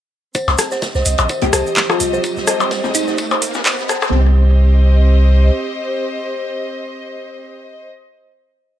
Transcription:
0.35 string section C4, synth bell C5, synth texture D#5, kick, tambourine, riser, shaker
0.48 sub bass C2, snare, percussion blips, shaker
0.58 cross-stick, snare, open hi-hat, tambourine, shaker
0.67 string section G4 C5
0.71 synth bell C5, snare, shaker
0.82 string section D#5, kick, snare, tambourine, shaker
0.95 sub bass C2, synth bell C5, snare, shaker
1.05 sub bass C2, open hi-hat, tambourine, shaker
1.18 sub bass A#1, closed hi-hat, percussion blips, shaker
1.29 synth bell C5, kick, tambourine, shaker
1.41 sub bass C2, synth pluck G4, closed hi-hat, percussion blips, shaker
1.53 sub bass C2, synth bell C5, cross-stick, open hi-hat, tambourine, shaker
1.67 shaker
1.76 kick, snare, clap, tambourine, shaker
1.90 synth pluck F4, synth bell C5, cross-stick, percussion blips, shaker
2.00 sub bass C2, open hi-hat, tambourine, shaker
2.13 synth bell C5, shaker
2.24 kick, tambourine, shaker
2.37 sub bass C2, snare, shaker
2.47 synth bell C5, cross-stick, open hi-hat, tambourine, shaker
2.60 percussion blips, shaker
2.71 synth bell C5, kick, snare, tambourine, shaker
2.84 sub bass C2, snare, percussion blips, shaker
2.94 sub bass C2, synth pluck D#4, open hi-hat, tambourine, shaker
3.07 sub bass A#1, synth bell C5, snare, shaker
3.18 kick, tambourine, shaker
3.31 synth bell C5, percussion blips, shaker
3.42 kick, open hi-hat, tambourine, shaker
3.54 snare, percussion blips, shaker
3.65 synth bell C5, kick, snare, clap, tambourine, shaker
3.79 sub bass C2, snare, shaker
3.89 sub bass C2, string section C4, synth bell C5, kick, cross-stick, shaker
3.97 string section G4
4.02 cross-stick, percussion blips, shaker
4.28 string section C5
4.35 string section D#5

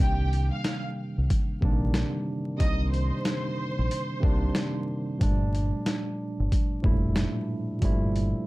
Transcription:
Already playing: tine electric piano C3 D#3
0.00 fingered electric bass C2, tine electric piano G3 A#3 D4, violin section G4 G5
0.33 closed hi-hat
0.53 violin section F5 F6
0.64 snare, closed hi-hat
1.18 fingered electric bass C2
1.30 kick, closed hi-hat
1.61 fingered electric bass A#1, tine electric piano C3 D3 G3 A#3, kick
1.65 tine electric piano D#3 D4
1.94 snare, closed hi-hat
2.58 fingered electric bass C2, tine electric piano C3 D#3 G3 A#3, violin section D#5 D#6, kick, closed hi-hat
2.62 tine electric piano D#4
2.93 violin section C5 C6, closed hi-hat
3.25 snare, closed hi-hat
3.79 fingered electric bass A#1
3.91 closed hi-hat
4.20 fingered electric bass C2, tine electric piano C3 D#3 G3 A#3, kick
4.25 tine electric piano D4
4.55 snare, closed hi-hat
5.18 fingered electric bass G1, tine electric piano A#2 F3 G3 A3, kick, closed hi-hat
5.22 tine electric piano D4
5.55 closed hi-hat
5.86 snare, closed hi-hat
6.40 fingered electric bass G1
6.52 kick, closed hi-hat
6.81 fingered electric bass F1, tine electric piano A2 F3 G3 A3, kick
6.86 tine electric piano A#2 E4
7.16 snare, closed hi-hat
7.81 fingered electric bass G1, tine electric piano A#2 F3 G3 A3, kick, closed hi-hat
7.85 tine electric piano E4
8.16 closed hi-hat

